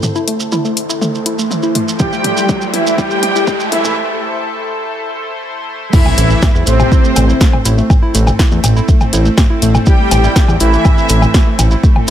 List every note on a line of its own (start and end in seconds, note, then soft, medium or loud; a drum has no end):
0.00 5.89 A3 medium
0.00 5.89 E4 medium
0.00 1.96 A4 medium
0.00 5.89 C5 medium
0.00 mid tom medium
0.00 riser medium
0.00 shekere medium
0.15 0.19 E4 loud
0.15 shekere soft
0.28 0.34 A3 medium
0.28 closed hi-hat loud
0.40 shekere medium
0.52 0.56 E4 loud
0.52 mid tom medium
0.52 shekere medium
0.65 0.71 A3 medium
0.65 shekere soft
0.77 closed hi-hat medium
0.89 0.93 E4 loud
0.89 shekere medium
1.01 1.08 A3 medium
1.01 mid tom medium
1.01 shekere medium
1.15 shekere soft
1.26 1.30 E4 loud
1.26 closed hi-hat loud
1.39 1.45 A3 medium
1.39 shekere medium
1.51 mid tom medium
1.51 shekere medium
1.63 1.67 E4 loud
1.63 shekere soft
1.75 1.81 A3 medium
1.75 closed hi-hat medium
1.75 mid tom medium
1.88 shekere medium
1.99 2.64 G3 medium
1.99 2.04 E4 medium
1.99 2.64 G4 loud
1.99 5.89 A4 medium
1.99 2.64 G5 medium
1.99 kick loud
1.99 mid tom medium
1.99 shekere medium
2.12 2.18 A3 medium
2.12 shekere soft
2.24 closed hi-hat loud
2.24 mid tom medium
2.37 2.41 E4 medium
2.37 shekere medium
2.49 2.55 A3 medium
2.49 kick loud
2.49 mid tom medium
2.49 shekere medium
2.61 shekere soft
2.74 2.96 E3 medium
2.74 2.77 E4 medium
2.74 2.96 E4 medium
2.74 2.96 E5 medium
2.74 closed hi-hat loud
2.74 mid tom medium
2.86 2.92 A3 medium
2.86 shekere medium
2.98 3.62 G3 medium
2.98 3.02 E4 loud
2.98 3.62 G4 loud
2.98 3.62 G5 medium
2.98 kick loud
2.98 mid tom medium
2.98 shekere medium
3.11 3.17 A3 medium
3.11 shekere soft
3.23 closed hi-hat loud
3.23 mid tom medium
3.35 3.39 E4 loud
3.35 shekere medium
3.47 3.54 A3 medium
3.47 kick loud
3.47 mid tom medium
3.47 shekere medium
3.60 shekere soft
3.72 3.95 E3 medium
3.72 3.95 E4 medium
3.72 3.76 E4 loud
3.72 3.94 E5 medium
3.72 closed hi-hat loud
3.72 mid tom medium
3.84 3.90 A3 medium
3.84 mid tom medium
3.84 shekere medium
5.93 6.57 E3 medium
5.93 12.10 A3 medium
5.93 6.00 A3 medium
5.93 12.10 C4 medium
5.93 6.57 E4 loud
5.93 6.57 E5 loud
5.93 kick loud
5.93 crash loud
5.93 impact medium
5.93 shekere medium
6.06 mid tom medium
6.06 low woodblock medium
6.18 6.34 A1 loud
6.18 6.22 E4 loud
6.18 closed hi-hat loud
6.18 shekere medium
6.30 6.36 A3 medium
6.30 shekere soft
6.42 kick loud
6.42 snare loud
6.42 mid tom medium
6.42 low woodblock soft
6.42 shekere soft
6.55 6.63 E2 loud
6.55 6.59 E4 loud
6.55 shekere soft
6.67 6.84 A1 loud
6.67 7.56 C3 medium
6.67 6.73 A3 medium
6.67 7.56 C4 loud
6.67 7.56 C5 medium
6.67 closed hi-hat loud
6.67 shekere medium
6.79 mid tom loud
6.79 low woodblock medium
6.79 shekere soft
6.92 6.95 E4 loud
6.92 kick loud
6.92 shekere soft
7.04 7.10 A3 medium
7.04 shekere soft
7.16 7.33 A1 loud
7.16 closed hi-hat loud
7.16 mid tom loud
7.16 low woodblock medium
7.16 shekere medium
7.29 7.32 E4 loud
7.29 shekere soft
7.41 7.47 A3 medium
7.41 kick loud
7.41 snare loud
7.41 shekere soft
7.53 mid tom medium
7.53 low woodblock soft
7.65 7.82 A1 medium
7.65 7.69 E4 loud
7.65 closed hi-hat loud
7.65 shekere loud
7.78 7.84 A3 medium
7.78 shekere soft
7.90 kick loud
7.90 mid tom medium
7.90 low woodblock soft
7.90 shekere medium
8.02 8.06 E4 loud
8.15 8.31 A1 loud
8.15 8.21 A3 medium
8.15 closed hi-hat loud
8.15 shekere medium
8.27 mid tom medium
8.27 low woodblock medium
8.27 shekere soft
8.39 8.43 E4 loud
8.39 kick loud
8.39 snare loud
8.39 shekere medium
8.51 8.60 E2 loud
8.51 8.58 A3 medium
8.51 shekere soft
8.64 8.80 A1 loud
8.64 closed hi-hat loud
8.64 mid tom medium
8.64 low woodblock medium
8.64 shekere loud
8.76 8.80 E4 loud
8.76 shekere soft
8.88 8.95 A3 medium
8.88 kick loud
8.88 shekere medium
9.01 mid tom medium
9.01 low woodblock soft
9.01 shekere soft
9.13 9.29 A1 medium
9.13 9.17 E4 loud
9.13 closed hi-hat loud
9.13 shekere medium
9.25 9.32 A3 medium
9.25 shekere soft
9.38 kick loud
9.38 snare loud
9.38 mid tom medium
9.38 low woodblock soft
9.38 shekere medium
9.50 9.54 E4 loud
9.62 9.79 A1 medium
9.62 9.68 A3 medium
9.62 closed hi-hat loud
9.62 shekere medium
9.75 mid tom medium
9.75 low woodblock medium
9.75 shekere soft
9.86 10.51 G3 medium
9.86 9.90 E4 loud
9.86 10.51 G4 loud
9.86 10.51 G5 loud
9.86 kick loud
9.86 shekere medium
9.99 10.05 A3 medium
10.11 10.28 A1 loud
10.11 closed hi-hat loud
10.11 mid tom medium
10.11 low woodblock medium
10.11 shekere loud
10.24 10.27 E4 loud
10.24 shekere soft
10.36 10.42 A3 medium
10.36 kick loud
10.36 snare loud
10.36 shekere medium
10.48 10.56 E2 loud
10.48 mid tom medium
10.48 low woodblock medium
10.48 shekere soft
10.60 10.77 A1 loud
10.60 11.49 E3 medium
10.60 11.49 E4 loud
10.60 10.64 E4 loud
10.60 11.49 E5 loud
10.60 closed hi-hat loud
10.60 shekere medium
10.73 10.79 A3 medium
10.73 shekere soft
10.85 kick loud
10.85 mid tom medium
10.85 low woodblock medium
10.85 shekere medium
10.98 11.01 E4 loud
10.98 shekere soft
11.09 11.26 A1 loud
11.09 11.16 A3 medium
11.09 closed hi-hat loud
11.09 shekere loud
11.22 mid tom medium
11.22 low woodblock medium
11.22 shekere soft
11.34 11.38 E4 loud
11.34 kick loud
11.34 snare loud
11.34 shekere medium
11.47 11.53 A3 medium
11.59 11.75 A1 medium
11.59 closed hi-hat loud
11.59 mid tom medium
11.59 low woodblock medium
11.59 shekere loud
11.71 11.75 E4 loud
11.71 shekere soft
11.83 11.90 A3 medium
11.83 kick loud
11.83 shekere medium
11.96 mid tom medium
11.96 low woodblock medium